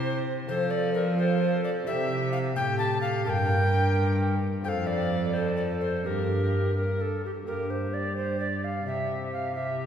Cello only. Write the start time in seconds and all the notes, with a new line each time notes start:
Already playing: C3
0.49 F3
1.87 C3
2.57 A2
3.27 G2
4.66 F2
6.06 G2
7.47 G2
8.86 C3